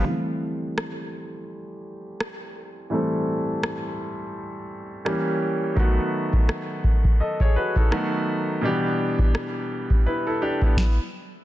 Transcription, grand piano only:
0.04 2.87 E3 medium
0.04 2.87 G3 medium
0.04 2.87 A3 medium
0.04 2.88 C4 medium
0.04 2.88 G4 medium
2.90 5.01 E3 medium
2.90 5.01 G3 medium
2.90 5.02 A3 medium
2.90 5.02 C4 medium
2.90 5.03 A4 medium
5.05 5.77 E3 medium
5.05 5.77 G3 medium
5.05 5.77 A#3 medium
5.05 5.77 C#4 medium
5.05 5.78 G4 medium
5.75 7.86 D#3 medium
5.75 7.87 F#3 medium
5.75 7.87 A3 medium
5.75 7.88 B3 medium
5.75 6.83 F#4 medium
7.20 7.40 A4 soft
7.20 7.40 D#5 medium
7.41 7.55 G#4 medium
7.41 7.55 C#5 medium
7.56 7.76 F#4 medium
7.56 7.75 B4 medium
7.77 8.11 D#4 soft
7.77 8.10 A4 medium
7.91 8.63 D#3 medium
7.91 8.63 F#3 medium
7.91 8.63 A3 medium
7.91 8.62 B3 medium
7.91 8.63 F#4 medium
8.61 10.72 B2 medium
8.61 10.73 E3 medium
8.61 10.73 G3 medium
8.61 10.03 B3 medium
8.61 10.04 D4 medium
8.61 10.04 G4 medium
10.06 10.26 E4 medium
10.06 10.26 B4 medium
10.27 10.41 E4 medium
10.27 10.41 A4 medium
10.42 10.62 D4 medium
10.42 10.61 G4 medium
10.63 10.97 B3 medium
10.63 10.96 E4 medium

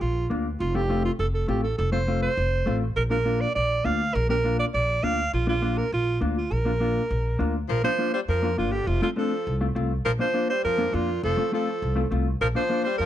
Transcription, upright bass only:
0.01 0.25 A#1 medium
0.31 0.54 D2 medium
0.60 1.08 F1 loud
1.19 1.43 F1 medium
1.48 1.72 A1 medium
1.79 2.26 F1 loud
2.37 2.61 F1 loud
2.67 2.91 A1 medium
2.96 3.44 A#1 loud
3.56 3.79 A#1 medium
3.85 4.09 D2 loud
4.15 4.62 A#1 loud
4.74 4.98 A#1 loud
5.04 5.27 D2 medium
5.33 5.80 A#1 loud
5.92 6.16 A#1 loud
6.21 6.45 D2 medium
6.51 6.98 A#1 medium
7.11 7.34 A#1 loud
7.40 7.64 D2 medium
7.69 7.81 A#1 loud
8.28 8.60 F2 medium
8.58 8.82 G1 medium
8.87 8.99 F1 loud
9.47 9.70 C2 loud
9.76 10.00 C2 medium
10.06 10.17 A#1 loud
10.65 10.88 F2 loud
10.94 11.17 F2 medium
11.23 11.35 F1 loud
11.82 12.06 C2 medium
12.12 12.35 C2 medium
12.41 12.53 A#1 loud
12.99 13.06 F2 medium

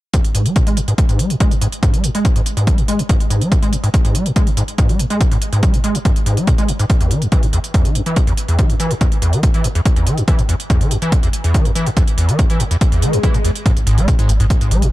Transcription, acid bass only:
0.14 0.20 G#2 medium
0.35 0.47 G#2 medium
0.46 0.57 G#3 medium
0.56 0.62 G#2 medium
0.67 0.78 G#3 medium
0.77 0.81 G2 loud
0.88 0.94 G#2 medium
1.09 1.21 G#2 medium
1.19 1.32 G#3 medium
1.30 1.36 G#2 medium
1.40 1.53 G#3 medium
1.51 1.55 G2 loud
1.62 1.68 G#2 medium
1.83 1.95 G#2 medium
1.94 2.05 G#3 medium
2.04 2.10 G#2 medium
2.15 2.26 G#3 medium
2.25 2.28 G2 loud
2.36 2.41 G#2 medium
2.57 2.69 G#2 medium
2.67 2.80 G#3 medium
2.78 2.84 G#2 medium
2.88 3.01 G#3 medium
2.99 3.03 G2 loud
3.09 3.15 G#2 medium
3.30 3.43 G#2 medium
3.41 3.53 G#3 medium
3.52 3.58 G#2 medium
3.62 3.74 G#3 medium
3.73 3.76 G2 loud
3.84 3.89 G#2 medium
4.05 4.16 G#2 medium
4.15 4.27 G#3 medium
4.26 4.31 G#2 medium
4.36 4.48 G#3 medium
4.47 4.50 G2 medium
4.57 4.63 G#2 medium
4.78 4.91 G#2 medium
4.89 5.01 G#3 medium
4.99 5.05 G#2 medium
5.10 5.22 G#3 medium
5.21 5.24 G2 loud
5.32 5.37 G#2 medium
5.53 5.64 G#2 medium
5.63 5.75 G#3 medium
5.74 5.79 G#2 medium
5.84 5.96 G#3 medium
5.95 5.98 G2 medium
6.05 6.11 G#2 medium
6.26 6.39 G#2 medium
6.37 6.49 G#3 medium
6.47 6.53 G#2 medium
6.58 6.70 G#3 medium
6.69 6.72 G2 loud
6.80 6.85 G#2 medium
7.01 7.12 E2 medium
7.11 7.23 E3 medium
7.22 7.27 E2 medium
7.32 7.44 E3 medium
7.43 7.46 D2 loud
7.53 7.59 E2 medium
7.74 7.87 E2 medium
7.85 7.97 E3 medium
7.95 8.01 E2 medium
8.06 8.18 E3 medium
8.16 8.20 D2 loud
8.27 8.33 E2 medium
8.49 8.60 E2 medium
8.59 8.71 E3 medium
8.70 8.75 E2 medium
8.80 8.92 E3 medium
8.91 8.94 D2 loud
9.01 9.07 E2 medium
9.22 9.35 E2 medium
9.33 9.45 E3 medium
9.43 9.49 E2 medium
9.54 9.66 E3 medium
9.64 9.68 D2 loud
9.75 9.81 E2 medium
9.96 10.08 E2 medium
10.07 10.19 E3 medium
10.18 10.23 E2 medium
10.28 10.40 E3 medium
10.39 10.42 D2 loud
10.49 10.55 E2 medium
10.70 10.82 E2 medium
10.81 10.93 E3 medium
10.91 10.97 E2 medium
11.02 11.14 E3 medium
11.12 11.16 D2 loud
11.23 11.29 E2 medium
11.44 11.56 E2 medium
11.54 11.67 E3 medium
11.65 11.71 E2 medium
11.75 11.88 E3 medium
11.87 11.90 D2 medium
11.97 12.03 E2 medium
12.18 12.30 E2 medium
12.29 12.40 E3 medium
12.39 12.45 E2 medium
12.50 12.61 E3 medium
12.60 12.64 D2 loud
12.71 12.77 E2 medium
12.92 13.04 E2 medium
13.02 13.15 E3 medium
13.13 13.19 E2 medium
13.23 13.36 E3 medium
13.34 13.38 D2 loud
13.44 13.51 E2 medium
13.66 13.72 G#2 medium
13.87 13.99 G#2 medium
13.98 14.09 G#3 medium
14.08 14.14 G#2 medium
14.19 14.31 G#2 medium
14.29 14.33 G2 loud
14.40 14.46 G#2 medium
14.61 14.73 G#2 medium
14.71 14.84 G#3 medium
14.82 14.88 G#2 medium

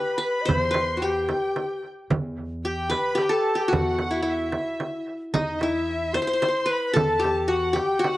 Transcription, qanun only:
0.00 0.92 G4 medium
0.00 0.17 B4 medium
0.18 0.51 B4 medium
0.45 0.77 C5 medium
0.71 1.80 B4 medium
0.97 1.08 F#4 medium
1.02 2.28 G4 medium
2.65 3.15 G4 medium
2.90 3.99 B4 medium
3.15 3.55 G4 medium
3.29 4.46 A4 medium
3.55 3.74 G4 medium
3.68 4.98 F#4 medium
4.11 4.22 E4 medium
4.22 5.40 E4 medium
5.34 5.69 D#4 medium
5.63 7.02 E4 medium
6.14 6.22 C5 medium
6.22 6.27 C5 medium
6.27 6.33 C5 medium
6.33 6.42 C5 medium
6.42 6.48 C5 medium
6.48 6.72 C5 medium
6.66 7.75 B4 medium
6.93 8.11 A4 medium
7.20 7.54 G4 medium
7.48 7.79 F#4 medium
7.73 8.05 G4 medium
7.99 8.17 F#4 medium

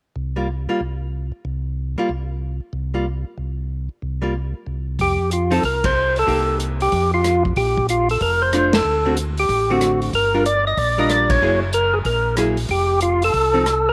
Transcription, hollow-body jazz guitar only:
0.36 0.47 G3 soft
0.36 0.47 A#3 soft
0.36 0.48 F4 soft
0.69 0.79 G3 medium
0.69 0.80 A#3 medium
0.69 0.80 F4 medium
1.98 2.08 G3 medium
1.98 2.08 A#3 medium
1.98 2.09 F4 medium
2.94 3.05 G3 soft
2.94 3.05 A#3 soft
2.94 3.05 F4 medium
4.22 4.33 G3 medium
4.22 4.33 A#3 medium
4.22 4.34 F4 medium
5.51 5.62 F3 medium
5.51 5.62 C4 medium
5.51 5.62 D#4 medium
5.51 5.62 A4 medium
6.27 6.92 A#3 medium
6.27 6.92 D#4 medium
6.27 6.92 G4 medium
8.53 8.72 A3 medium
8.53 8.72 D4 medium
8.53 8.72 F4 medium
9.05 9.16 D3 medium
9.05 9.16 A3 medium
9.05 9.16 C4 medium
9.05 9.16 F#4 medium
9.70 10.11 D3 medium
9.70 10.11 A3 medium
9.70 10.12 C4 medium
9.70 10.12 F#4 medium
10.34 10.44 G3 medium
10.34 10.44 D4 medium
10.34 10.45 F4 medium
10.34 10.45 A#4 medium
10.98 11.39 G3 medium
10.98 11.39 D4 medium
10.98 11.40 F4 medium
10.98 11.40 A#4 medium
11.42 11.60 F#3 medium
11.42 11.60 A#3 medium
11.42 11.61 E4 medium
11.42 11.61 G#4 medium
12.37 12.56 F#3 medium
12.37 12.56 A#3 medium
12.37 12.56 E4 medium
12.37 12.57 G#4 medium
13.53 13.64 F3 medium
13.53 13.64 C4 medium
13.53 13.65 D#4 medium
13.53 13.65 A4 medium

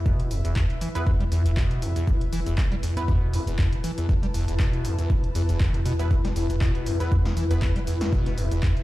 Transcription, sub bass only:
0.06 0.41 E1 loud
0.45 0.54 E1 loud
0.70 0.80 E1 medium
1.07 1.42 E2 medium
1.46 1.66 E1 loud
1.71 1.80 D1 loud
2.07 2.43 E1 loud
2.46 2.56 E1 loud
2.72 2.81 E1 medium
3.08 3.44 E2 medium
3.47 3.68 E1 loud
3.73 3.82 D1 medium
4.09 4.44 E1 loud
4.48 4.58 E1 loud
4.73 4.83 E1 medium
5.10 5.21 E1 medium
5.49 5.70 E1 medium
5.74 6.08 E2 medium
6.11 6.46 E1 loud
6.50 6.59 E1 loud
6.75 6.85 E1 medium
7.12 7.47 E2 medium
7.51 7.71 E1 loud
7.76 7.85 D1 medium
8.13 8.48 E1 loud
8.52 8.61 E1 loud
8.77 8.83 E1 medium

